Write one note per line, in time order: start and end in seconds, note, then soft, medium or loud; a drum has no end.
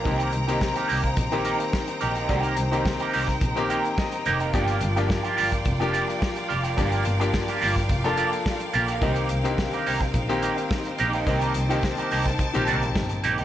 0.00 0.30 A#3 medium
0.00 4.49 A#5 medium
0.05 0.26 C2 loud
0.05 0.36 D#3 medium
0.05 0.36 A#3 medium
0.05 0.36 C4 medium
0.05 0.31 D#4 medium
0.05 4.50 D#4 medium
0.05 0.31 G4 loud
0.05 0.37 G4 medium
0.05 4.50 C5 medium
0.05 13.45 G5 medium
0.05 kick loud
0.05 closed hi-hat medium
0.20 closed hi-hat soft
0.32 0.54 C2 medium
0.32 muted clean electric guitar stroke soft
0.32 closed hi-hat medium
0.48 1.09 D#3 medium
0.48 1.09 A#3 medium
0.48 0.60 A#3 medium
0.48 1.09 C4 medium
0.48 0.60 D#4 medium
0.48 0.60 G4 medium
0.48 1.10 G4 medium
0.48 closed hi-hat soft
0.61 kick loud
0.61 snare loud
0.76 0.87 A#3 medium
0.76 0.88 D#4 medium
0.76 0.89 G4 medium
0.76 closed hi-hat soft
0.88 1.10 C2 medium
0.88 1.08 A#3 medium
0.88 1.03 D#4 medium
0.88 1.03 G4 medium
0.88 open hi-hat medium
1.04 muted clean electric guitar stroke medium
1.04 kick medium
1.04 closed hi-hat soft
1.17 1.38 A#1 medium
1.17 muted clean electric guitar stroke soft
1.17 kick loud
1.17 closed hi-hat medium
1.31 2.03 D#3 medium
1.31 2.03 A#3 medium
1.31 1.44 A#3 soft
1.31 2.03 C4 medium
1.31 1.45 D#4 medium
1.31 1.45 G4 medium
1.31 2.03 G4 loud
1.31 closed hi-hat soft
1.45 1.64 A#3 medium
1.45 1.60 D#4 medium
1.45 1.59 G4 medium
1.45 closed hi-hat medium
1.60 muted clean electric guitar stroke soft
1.60 closed hi-hat soft
1.73 muted clean electric guitar stroke soft
1.73 kick loud
1.73 snare loud
1.87 muted clean electric guitar stroke soft
1.87 closed hi-hat soft
2.01 2.22 A#1 medium
2.01 2.16 A#3 medium
2.01 2.15 D#4 medium
2.01 2.15 G4 medium
2.01 closed hi-hat medium
2.16 2.28 A#3 soft
2.16 2.28 D#4 medium
2.16 2.29 G4 medium
2.16 closed hi-hat soft
2.28 2.50 C2 medium
2.28 2.60 D#3 medium
2.28 2.40 A3 medium
2.28 2.60 A#3 medium
2.28 2.60 C4 medium
2.28 2.40 D4 medium
2.28 2.41 F#4 medium
2.28 2.61 G4 medium
2.28 kick loud
2.28 closed hi-hat medium
2.40 2.55 A#3 medium
2.40 2.55 D#4 medium
2.40 2.56 G4 medium
2.40 closed hi-hat soft
2.56 2.78 C2 medium
2.56 muted clean electric guitar stroke soft
2.56 closed hi-hat medium
2.71 3.33 D#3 medium
2.71 3.33 A#3 medium
2.71 2.85 A#3 medium
2.71 3.33 C4 medium
2.71 2.85 D#4 medium
2.71 2.86 G4 medium
2.71 3.34 G4 medium
2.71 closed hi-hat soft
2.86 muted clean electric guitar stroke soft
2.86 kick loud
2.86 snare loud
3.00 3.12 A#3 soft
3.00 3.13 D#4 medium
3.00 3.13 G4 medium
3.00 closed hi-hat soft
3.13 3.35 C2 medium
3.13 3.33 A#3 medium
3.13 3.28 D#4 medium
3.13 3.27 G4 medium
3.13 open hi-hat medium
3.28 muted clean electric guitar stroke soft
3.28 kick medium
3.28 snare soft
3.28 closed hi-hat soft
3.41 3.62 A#1 medium
3.41 muted clean electric guitar stroke soft
3.41 kick loud
3.41 closed hi-hat medium
3.55 4.27 D#3 medium
3.55 4.27 A#3 medium
3.55 3.69 A#3 medium
3.55 4.27 C4 medium
3.55 3.69 D#4 medium
3.55 3.70 G4 medium
3.55 4.28 G4 loud
3.55 closed hi-hat soft
3.70 3.89 A#3 medium
3.70 3.85 D#4 medium
3.70 3.84 G4 medium
3.70 3.96 G5 medium
3.70 closed hi-hat medium
3.85 muted clean electric guitar stroke soft
3.85 closed hi-hat soft
3.98 4.24 D#5 medium
3.98 muted clean electric guitar stroke soft
3.98 kick loud
3.98 snare loud
4.12 muted clean electric guitar stroke soft
4.12 closed hi-hat soft
4.26 4.53 F1 medium
4.26 4.41 A#3 medium
4.26 4.40 D#4 medium
4.26 4.39 G4 medium
4.26 4.52 A#4 medium
4.26 closed hi-hat medium
4.40 4.52 A#3 medium
4.40 4.54 D#4 medium
4.40 4.53 G4 medium
4.40 closed hi-hat soft
4.53 4.74 G1 medium
4.53 4.84 F3 medium
4.53 4.79 A#3 medium
4.53 4.84 A#3 medium
4.53 4.85 D4 medium
4.53 4.80 F4 medium
4.53 8.99 F4 medium
4.53 4.80 G4 medium
4.53 4.85 G4 medium
4.53 8.99 D5 medium
4.53 11.23 F5 medium
4.53 kick loud
4.53 closed hi-hat medium
4.68 closed hi-hat soft
4.81 5.02 G1 loud
4.81 muted clean electric guitar stroke soft
4.81 closed hi-hat medium
4.96 5.58 F3 medium
4.96 5.58 A#3 medium
4.96 5.08 A#3 soft
4.96 5.58 D4 medium
4.96 5.08 F4 medium
4.96 5.09 G4 medium
4.96 5.58 G4 medium
4.96 closed hi-hat soft
5.09 muted clean electric guitar stroke soft
5.09 kick loud
5.09 snare loud
5.23 5.36 A#3 soft
5.23 5.36 F4 medium
5.23 5.37 G4 medium
5.23 closed hi-hat soft
5.37 5.58 G1 medium
5.37 5.56 A#3 medium
5.37 5.52 F4 medium
5.37 5.51 G4 medium
5.37 open hi-hat medium
5.52 muted clean electric guitar stroke soft
5.52 kick medium
5.52 closed hi-hat soft
5.65 5.86 F1 loud
5.65 muted clean electric guitar stroke soft
5.65 kick loud
5.65 closed hi-hat medium
5.80 6.51 F3 medium
5.80 5.92 A#3 medium
5.80 6.52 A#3 medium
5.80 6.52 D4 medium
5.80 5.92 F4 medium
5.80 5.93 G4 medium
5.80 6.52 G4 loud
5.80 closed hi-hat soft
5.93 6.12 A#3 medium
5.93 6.07 F4 medium
5.93 6.06 G4 medium
5.93 closed hi-hat medium
6.07 muted clean electric guitar stroke soft
6.07 closed hi-hat soft
6.21 muted clean electric guitar stroke soft
6.21 kick loud
6.21 snare loud
6.36 muted clean electric guitar stroke soft
6.36 closed hi-hat soft
6.49 6.71 F1 medium
6.49 6.64 A#3 medium
6.49 6.63 F4 medium
6.49 6.62 G4 medium
6.49 closed hi-hat medium
6.63 6.76 A#3 soft
6.63 6.76 F4 medium
6.63 6.77 G4 medium
6.63 closed hi-hat soft
6.77 6.99 G1 loud
6.77 7.08 F3 medium
6.77 7.03 A#3 medium
6.77 7.09 A#3 medium
6.77 7.09 D4 medium
6.77 7.04 F4 medium
6.77 7.04 G4 medium
6.77 7.09 G4 medium
6.77 kick loud
6.77 closed hi-hat medium
6.92 closed hi-hat soft
7.05 7.26 G1 loud
7.05 muted clean electric guitar stroke soft
7.05 closed hi-hat medium
7.20 7.81 F3 medium
7.20 7.82 A#3 medium
7.20 7.32 A#3 medium
7.20 7.82 D4 medium
7.20 7.33 F4 medium
7.20 7.33 G4 medium
7.20 7.82 G4 medium
7.20 closed hi-hat soft
7.33 muted clean electric guitar stroke soft
7.33 kick loud
7.33 snare loud
7.48 7.60 A#3 medium
7.48 7.61 F4 medium
7.48 7.61 G4 medium
7.48 closed hi-hat soft
7.61 7.82 G1 medium
7.61 7.81 A#3 medium
7.61 7.76 F4 medium
7.61 7.75 G4 medium
7.61 open hi-hat medium
7.76 muted clean electric guitar stroke soft
7.76 kick medium
7.76 snare soft
7.76 closed hi-hat soft
7.89 8.10 F1 medium
7.89 muted clean electric guitar stroke soft
7.89 kick loud
7.89 closed hi-hat medium
8.04 8.75 F3 medium
8.04 8.76 A#3 medium
8.04 8.16 A#3 medium
8.04 8.76 D4 medium
8.04 8.17 F4 medium
8.04 8.18 G4 medium
8.04 8.76 A4 loud
8.04 closed hi-hat soft
8.17 8.37 A#3 medium
8.17 8.32 F4 medium
8.17 8.31 G4 medium
8.17 closed hi-hat medium
8.32 muted clean electric guitar stroke soft
8.32 closed hi-hat soft
8.45 muted clean electric guitar stroke soft
8.45 kick loud
8.45 snare loud
8.60 muted clean electric guitar stroke soft
8.60 closed hi-hat soft
8.73 9.02 A#1 medium
8.73 8.89 A#3 medium
8.73 8.88 F4 medium
8.73 8.87 G4 medium
8.73 closed hi-hat medium
8.88 9.01 A#3 medium
8.88 9.02 F4 medium
8.88 9.02 G4 medium
8.88 closed hi-hat soft
9.01 9.23 C2 loud
9.01 9.32 D#3 medium
9.01 9.33 A#3 medium
9.01 9.28 A#3 medium
9.01 9.33 C4 medium
9.01 13.45 D#4 medium
9.01 9.28 D#4 medium
9.01 9.33 G4 medium
9.01 9.29 G4 medium
9.01 13.45 C5 medium
9.01 kick loud
9.01 closed hi-hat medium
9.16 closed hi-hat soft
9.29 9.51 C2 medium
9.29 muted clean electric guitar stroke soft
9.29 closed hi-hat medium
9.44 9.50 D3 medium
9.44 10.06 A#3 medium
9.44 9.57 A#3 soft
9.44 10.06 C4 medium
9.44 9.58 D#4 medium
9.44 9.58 G4 medium
9.44 10.06 G4 medium
9.44 closed hi-hat soft
9.50 10.09 D#3 medium
9.58 muted clean electric guitar stroke soft
9.58 kick loud
9.58 snare loud
9.73 9.85 A#3 soft
9.73 9.86 D#4 medium
9.73 9.86 G4 medium
9.73 closed hi-hat soft
9.86 10.07 C2 medium
9.86 10.05 A#3 medium
9.86 10.01 D#4 medium
9.86 10.01 G4 medium
9.86 open hi-hat medium
10.01 muted clean electric guitar stroke soft
10.01 kick medium
10.01 snare soft
10.01 closed hi-hat soft
10.14 10.35 A#1 loud
10.14 muted clean electric guitar stroke soft
10.14 kick loud
10.14 closed hi-hat medium
10.28 11.00 D#3 medium
10.28 11.00 A#3 medium
10.28 10.42 A#3 medium
10.28 11.00 C4 medium
10.28 10.42 D#4 medium
10.28 10.43 G4 medium
10.28 11.00 G4 loud
10.28 closed hi-hat soft
10.42 10.62 A#3 medium
10.42 10.58 D#4 medium
10.42 10.57 G4 medium
10.42 closed hi-hat medium
10.58 muted clean electric guitar stroke soft
10.58 closed hi-hat soft
10.71 muted clean electric guitar stroke soft
10.71 kick loud
10.71 snare loud
10.85 muted clean electric guitar stroke soft
10.85 closed hi-hat soft
10.98 11.20 A#1 medium
10.98 11.14 A#3 medium
10.98 11.13 D#4 medium
10.98 11.13 G4 medium
10.98 closed hi-hat medium
11.13 11.26 A#3 soft
11.13 11.26 D#4 medium
11.13 11.26 G4 medium
11.13 closed hi-hat soft
11.26 11.48 C2 loud
11.26 11.57 D#3 medium
11.26 11.57 A#3 medium
11.26 11.53 A#3 medium
11.26 11.58 C4 medium
11.26 11.53 D#4 medium
11.26 11.58 G4 medium
11.26 11.53 G4 medium
11.26 13.45 A5 medium
11.26 kick loud
11.26 closed hi-hat medium
11.41 closed hi-hat medium
11.54 11.76 C2 medium
11.54 muted clean electric guitar stroke soft
11.54 closed hi-hat medium
11.69 12.30 D#3 medium
11.69 12.31 A#3 medium
11.69 11.82 A#3 soft
11.69 12.31 C4 medium
11.69 11.83 D#4 medium
11.69 11.83 G4 medium
11.69 12.31 G4 medium
11.69 closed hi-hat soft
11.83 kick loud
11.83 snare loud
11.98 12.10 A#3 soft
11.98 12.11 D#4 medium
11.98 12.12 G4 medium
11.98 closed hi-hat soft
12.11 12.32 C2 medium
12.11 12.30 A#3 medium
12.11 12.26 D#4 medium
12.11 12.25 G4 medium
12.11 open hi-hat medium
12.26 muted clean electric guitar stroke soft
12.26 kick medium
12.26 snare soft
12.26 closed hi-hat soft
12.39 muted clean electric guitar stroke soft
12.39 kick loud
12.39 closed hi-hat medium
12.53 12.64 A#1 medium
12.53 13.25 D#3 medium
12.53 13.25 A#3 medium
12.53 12.66 A#3 medium
12.53 13.25 C4 medium
12.53 12.67 D#4 medium
12.53 12.68 G4 medium
12.53 13.25 G4 loud
12.53 closed hi-hat soft
12.67 12.79 C2 medium
12.67 12.88 A#3 medium
12.67 12.82 D#4 medium
12.67 12.82 G4 medium
12.67 closed hi-hat medium
12.83 12.93 A#1 medium
12.83 muted clean electric guitar stroke soft
12.83 closed hi-hat soft
12.95 13.06 G1 medium
12.95 muted clean electric guitar stroke soft
12.95 kick loud
12.95 snare loud
13.09 muted clean electric guitar stroke soft
13.09 closed hi-hat soft
13.23 13.35 A#1 medium
13.23 13.39 A#3 medium
13.23 13.38 D#4 medium
13.23 13.38 G4 medium
13.23 closed hi-hat medium
13.38 13.45 C2 medium
13.38 13.45 A#3 soft
13.38 13.45 D#4 medium
13.38 13.45 G4 medium
13.38 closed hi-hat soft